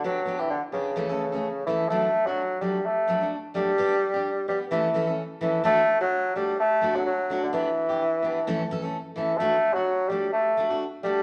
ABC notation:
X:1
M:4/4
L:1/16
Q:"Swing 16ths" 1/4=128
K:D
V:1 name="Steel-string acoustic guitar"
[B,DG] z [B,DG] [DG] z2 [B,DG] z [E,A,CA] [A,CA] z [A,CA] z2 [E,A,CA] z | [F,A,DF] z2 [A,DF] z2 [F,A,DF] z3 [F,A,DF] [A,DF] z2 [F,A,DF] z | [B,DG] z2 [DG] z2 [B,G] z [E,A,CA] z [E,A,CA] [A,CA] z2 [E,A,CA] z | [A,DF] z2 D z2 [A,DF] z3 [A,DF] [DF] z2 [A,DF] z |
[B,DG] z2 [DG] z2 [B,DG] z [E,A,CA] z [CA] [A,CA] z2 [E,A,CA] z | [A,DF] z2 [DF] z2 [A,DF] z3 [A,DF] [DF] z2 [A,DF] z |]
V:2 name="Bassoon" clef=bass
F,3 E, D,2 C,8 E,2 | A,3 F,3 G,2 A,4 z2 G,2- | G,6 G,2 E,4 z2 E,2 | A,3 F,3 G,2 A,3 F, F,3 D, |
E,12 z2 E,2 | A,3 F,3 G,2 A,4 z2 G,2 |]